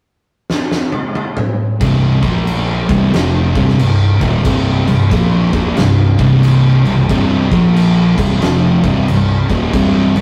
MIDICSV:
0, 0, Header, 1, 4, 480
1, 0, Start_track
1, 0, Key_signature, -3, "minor"
1, 0, Tempo, 660793
1, 1310, Time_signature, 4, 2, 24, 8
1, 7419, End_track
2, 0, Start_track
2, 0, Title_t, "Distorted electric guitar"
2, 0, Program_c, 0, 30
2, 1310, Note_on_c, 0, 36, 109
2, 1315, Note_on_c, 0, 43, 99
2, 1315, Note_on_c, 0, 48, 118
2, 1606, Note_off_c, 0, 36, 0
2, 1608, Note_off_c, 0, 43, 0
2, 1608, Note_off_c, 0, 48, 0
2, 1617, Note_on_c, 0, 46, 86
2, 1625, Note_on_c, 0, 53, 86
2, 1625, Note_on_c, 0, 58, 95
2, 2087, Note_off_c, 0, 46, 0
2, 2091, Note_off_c, 0, 53, 0
2, 2091, Note_off_c, 0, 58, 0
2, 2102, Note_on_c, 0, 36, 102
2, 2106, Note_on_c, 0, 43, 99
2, 2111, Note_on_c, 0, 48, 108
2, 2269, Note_off_c, 0, 36, 0
2, 2271, Note_off_c, 0, 43, 0
2, 2274, Note_off_c, 0, 48, 0
2, 2280, Note_on_c, 0, 41, 102
2, 2283, Note_on_c, 0, 48, 98
2, 2291, Note_on_c, 0, 53, 100
2, 2571, Note_off_c, 0, 41, 0
2, 2572, Note_off_c, 0, 48, 0
2, 2576, Note_off_c, 0, 53, 0
2, 2579, Note_on_c, 0, 36, 91
2, 2584, Note_on_c, 0, 43, 93
2, 2588, Note_on_c, 0, 48, 90
2, 2743, Note_off_c, 0, 36, 0
2, 2750, Note_off_c, 0, 43, 0
2, 2752, Note_off_c, 0, 48, 0
2, 2752, Note_on_c, 0, 36, 61
2, 2758, Note_on_c, 0, 43, 76
2, 2995, Note_off_c, 0, 36, 0
2, 2998, Note_off_c, 0, 43, 0
2, 3057, Note_on_c, 0, 39, 84
2, 3061, Note_on_c, 0, 46, 104
2, 3063, Note_on_c, 0, 51, 107
2, 3227, Note_off_c, 0, 39, 0
2, 3229, Note_off_c, 0, 46, 0
2, 3230, Note_off_c, 0, 51, 0
2, 3231, Note_on_c, 0, 36, 95
2, 3236, Note_on_c, 0, 43, 111
2, 3241, Note_on_c, 0, 48, 126
2, 3525, Note_off_c, 0, 36, 0
2, 3527, Note_off_c, 0, 43, 0
2, 3532, Note_off_c, 0, 48, 0
2, 3533, Note_on_c, 0, 36, 61
2, 3536, Note_on_c, 0, 43, 75
2, 3675, Note_off_c, 0, 36, 0
2, 3676, Note_off_c, 0, 43, 0
2, 3704, Note_on_c, 0, 46, 100
2, 3708, Note_on_c, 0, 53, 97
2, 3712, Note_on_c, 0, 58, 118
2, 4000, Note_off_c, 0, 46, 0
2, 4006, Note_off_c, 0, 53, 0
2, 4007, Note_off_c, 0, 58, 0
2, 4009, Note_on_c, 0, 46, 95
2, 4015, Note_on_c, 0, 53, 98
2, 4018, Note_on_c, 0, 58, 118
2, 4183, Note_off_c, 0, 46, 0
2, 4186, Note_off_c, 0, 53, 0
2, 4188, Note_off_c, 0, 58, 0
2, 4191, Note_on_c, 0, 36, 68
2, 4192, Note_on_c, 0, 43, 71
2, 4435, Note_off_c, 0, 36, 0
2, 4436, Note_off_c, 0, 43, 0
2, 4495, Note_on_c, 0, 36, 97
2, 4499, Note_on_c, 0, 43, 113
2, 4500, Note_on_c, 0, 48, 97
2, 4966, Note_off_c, 0, 36, 0
2, 4968, Note_off_c, 0, 43, 0
2, 4969, Note_off_c, 0, 48, 0
2, 4984, Note_on_c, 0, 36, 69
2, 4985, Note_on_c, 0, 43, 74
2, 5121, Note_off_c, 0, 36, 0
2, 5121, Note_off_c, 0, 43, 0
2, 5155, Note_on_c, 0, 36, 114
2, 5160, Note_on_c, 0, 43, 106
2, 5163, Note_on_c, 0, 48, 121
2, 5448, Note_off_c, 0, 36, 0
2, 5451, Note_off_c, 0, 43, 0
2, 5453, Note_off_c, 0, 48, 0
2, 5456, Note_on_c, 0, 46, 89
2, 5466, Note_on_c, 0, 53, 98
2, 5467, Note_on_c, 0, 58, 102
2, 5927, Note_off_c, 0, 46, 0
2, 5930, Note_off_c, 0, 53, 0
2, 5932, Note_off_c, 0, 58, 0
2, 5932, Note_on_c, 0, 36, 94
2, 5932, Note_on_c, 0, 43, 98
2, 5939, Note_on_c, 0, 48, 95
2, 6104, Note_off_c, 0, 36, 0
2, 6104, Note_off_c, 0, 43, 0
2, 6107, Note_off_c, 0, 48, 0
2, 6113, Note_on_c, 0, 41, 101
2, 6118, Note_on_c, 0, 48, 92
2, 6125, Note_on_c, 0, 53, 110
2, 6407, Note_off_c, 0, 41, 0
2, 6409, Note_off_c, 0, 48, 0
2, 6413, Note_off_c, 0, 53, 0
2, 6416, Note_on_c, 0, 36, 91
2, 6422, Note_on_c, 0, 43, 95
2, 6425, Note_on_c, 0, 48, 112
2, 6585, Note_off_c, 0, 36, 0
2, 6588, Note_off_c, 0, 43, 0
2, 6590, Note_off_c, 0, 48, 0
2, 6596, Note_on_c, 0, 36, 62
2, 6599, Note_on_c, 0, 43, 69
2, 6836, Note_off_c, 0, 36, 0
2, 6837, Note_off_c, 0, 43, 0
2, 6889, Note_on_c, 0, 39, 93
2, 6896, Note_on_c, 0, 46, 98
2, 6901, Note_on_c, 0, 51, 100
2, 7061, Note_off_c, 0, 39, 0
2, 7064, Note_off_c, 0, 46, 0
2, 7067, Note_off_c, 0, 51, 0
2, 7069, Note_on_c, 0, 36, 104
2, 7074, Note_on_c, 0, 43, 124
2, 7077, Note_on_c, 0, 48, 107
2, 7363, Note_off_c, 0, 36, 0
2, 7366, Note_off_c, 0, 43, 0
2, 7367, Note_off_c, 0, 48, 0
2, 7380, Note_on_c, 0, 36, 63
2, 7381, Note_on_c, 0, 43, 73
2, 7419, Note_off_c, 0, 36, 0
2, 7419, Note_off_c, 0, 43, 0
2, 7419, End_track
3, 0, Start_track
3, 0, Title_t, "Fingered electric bass"
3, 0, Program_c, 1, 33
3, 1314, Note_on_c, 1, 24, 86
3, 1596, Note_off_c, 1, 24, 0
3, 1619, Note_on_c, 1, 34, 99
3, 2068, Note_off_c, 1, 34, 0
3, 2104, Note_on_c, 1, 24, 93
3, 2263, Note_off_c, 1, 24, 0
3, 2279, Note_on_c, 1, 29, 111
3, 2558, Note_off_c, 1, 29, 0
3, 2584, Note_on_c, 1, 24, 96
3, 2743, Note_off_c, 1, 24, 0
3, 2758, Note_on_c, 1, 24, 77
3, 3038, Note_off_c, 1, 24, 0
3, 3062, Note_on_c, 1, 27, 99
3, 3222, Note_off_c, 1, 27, 0
3, 3235, Note_on_c, 1, 24, 88
3, 3517, Note_off_c, 1, 24, 0
3, 3539, Note_on_c, 1, 24, 90
3, 3701, Note_off_c, 1, 24, 0
3, 3719, Note_on_c, 1, 34, 91
3, 3999, Note_off_c, 1, 34, 0
3, 4020, Note_on_c, 1, 34, 95
3, 4182, Note_off_c, 1, 34, 0
3, 4197, Note_on_c, 1, 24, 83
3, 4478, Note_off_c, 1, 24, 0
3, 4498, Note_on_c, 1, 24, 95
3, 4948, Note_off_c, 1, 24, 0
3, 4981, Note_on_c, 1, 24, 87
3, 5142, Note_off_c, 1, 24, 0
3, 5152, Note_on_c, 1, 24, 95
3, 5435, Note_off_c, 1, 24, 0
3, 5462, Note_on_c, 1, 34, 104
3, 5909, Note_off_c, 1, 34, 0
3, 5941, Note_on_c, 1, 24, 90
3, 6101, Note_off_c, 1, 24, 0
3, 6117, Note_on_c, 1, 29, 111
3, 6397, Note_off_c, 1, 29, 0
3, 6420, Note_on_c, 1, 24, 98
3, 6580, Note_off_c, 1, 24, 0
3, 6585, Note_on_c, 1, 24, 79
3, 6869, Note_off_c, 1, 24, 0
3, 6897, Note_on_c, 1, 27, 106
3, 7058, Note_off_c, 1, 27, 0
3, 7073, Note_on_c, 1, 24, 82
3, 7353, Note_off_c, 1, 24, 0
3, 7371, Note_on_c, 1, 24, 82
3, 7419, Note_off_c, 1, 24, 0
3, 7419, End_track
4, 0, Start_track
4, 0, Title_t, "Drums"
4, 361, Note_on_c, 9, 38, 70
4, 434, Note_off_c, 9, 38, 0
4, 519, Note_on_c, 9, 38, 72
4, 592, Note_off_c, 9, 38, 0
4, 671, Note_on_c, 9, 48, 76
4, 744, Note_off_c, 9, 48, 0
4, 838, Note_on_c, 9, 48, 86
4, 911, Note_off_c, 9, 48, 0
4, 993, Note_on_c, 9, 47, 102
4, 1066, Note_off_c, 9, 47, 0
4, 1314, Note_on_c, 9, 36, 115
4, 1314, Note_on_c, 9, 49, 85
4, 1386, Note_off_c, 9, 36, 0
4, 1386, Note_off_c, 9, 49, 0
4, 1618, Note_on_c, 9, 36, 106
4, 1618, Note_on_c, 9, 49, 58
4, 1691, Note_off_c, 9, 36, 0
4, 1691, Note_off_c, 9, 49, 0
4, 1795, Note_on_c, 9, 49, 82
4, 1867, Note_off_c, 9, 49, 0
4, 2101, Note_on_c, 9, 36, 115
4, 2103, Note_on_c, 9, 49, 67
4, 2174, Note_off_c, 9, 36, 0
4, 2175, Note_off_c, 9, 49, 0
4, 2278, Note_on_c, 9, 49, 94
4, 2285, Note_on_c, 9, 38, 116
4, 2351, Note_off_c, 9, 49, 0
4, 2357, Note_off_c, 9, 38, 0
4, 2580, Note_on_c, 9, 49, 58
4, 2582, Note_on_c, 9, 36, 111
4, 2653, Note_off_c, 9, 49, 0
4, 2655, Note_off_c, 9, 36, 0
4, 2676, Note_on_c, 9, 38, 32
4, 2749, Note_off_c, 9, 38, 0
4, 2756, Note_on_c, 9, 49, 90
4, 2828, Note_off_c, 9, 49, 0
4, 3059, Note_on_c, 9, 49, 60
4, 3060, Note_on_c, 9, 36, 94
4, 3132, Note_off_c, 9, 49, 0
4, 3133, Note_off_c, 9, 36, 0
4, 3230, Note_on_c, 9, 49, 98
4, 3235, Note_on_c, 9, 36, 117
4, 3302, Note_off_c, 9, 49, 0
4, 3308, Note_off_c, 9, 36, 0
4, 3540, Note_on_c, 9, 49, 62
4, 3613, Note_off_c, 9, 49, 0
4, 3714, Note_on_c, 9, 49, 79
4, 3715, Note_on_c, 9, 36, 113
4, 3787, Note_off_c, 9, 49, 0
4, 3788, Note_off_c, 9, 36, 0
4, 4018, Note_on_c, 9, 49, 62
4, 4019, Note_on_c, 9, 36, 109
4, 4091, Note_off_c, 9, 49, 0
4, 4092, Note_off_c, 9, 36, 0
4, 4189, Note_on_c, 9, 49, 87
4, 4196, Note_on_c, 9, 38, 127
4, 4262, Note_off_c, 9, 49, 0
4, 4268, Note_off_c, 9, 38, 0
4, 4493, Note_on_c, 9, 49, 61
4, 4498, Note_on_c, 9, 36, 103
4, 4566, Note_off_c, 9, 49, 0
4, 4570, Note_off_c, 9, 36, 0
4, 4670, Note_on_c, 9, 49, 83
4, 4743, Note_off_c, 9, 49, 0
4, 4978, Note_on_c, 9, 49, 57
4, 5051, Note_off_c, 9, 49, 0
4, 5151, Note_on_c, 9, 49, 77
4, 5154, Note_on_c, 9, 36, 109
4, 5224, Note_off_c, 9, 49, 0
4, 5226, Note_off_c, 9, 36, 0
4, 5460, Note_on_c, 9, 36, 99
4, 5464, Note_on_c, 9, 49, 61
4, 5532, Note_off_c, 9, 36, 0
4, 5537, Note_off_c, 9, 49, 0
4, 5639, Note_on_c, 9, 49, 85
4, 5711, Note_off_c, 9, 49, 0
4, 5941, Note_on_c, 9, 36, 114
4, 5945, Note_on_c, 9, 49, 108
4, 6014, Note_off_c, 9, 36, 0
4, 6018, Note_off_c, 9, 49, 0
4, 6115, Note_on_c, 9, 49, 88
4, 6121, Note_on_c, 9, 38, 115
4, 6187, Note_off_c, 9, 49, 0
4, 6194, Note_off_c, 9, 38, 0
4, 6419, Note_on_c, 9, 49, 63
4, 6420, Note_on_c, 9, 36, 100
4, 6492, Note_off_c, 9, 36, 0
4, 6492, Note_off_c, 9, 49, 0
4, 6597, Note_on_c, 9, 49, 86
4, 6669, Note_off_c, 9, 49, 0
4, 6898, Note_on_c, 9, 36, 97
4, 6900, Note_on_c, 9, 49, 64
4, 6971, Note_off_c, 9, 36, 0
4, 6973, Note_off_c, 9, 49, 0
4, 7072, Note_on_c, 9, 36, 117
4, 7073, Note_on_c, 9, 49, 97
4, 7144, Note_off_c, 9, 36, 0
4, 7146, Note_off_c, 9, 49, 0
4, 7378, Note_on_c, 9, 49, 59
4, 7419, Note_off_c, 9, 49, 0
4, 7419, End_track
0, 0, End_of_file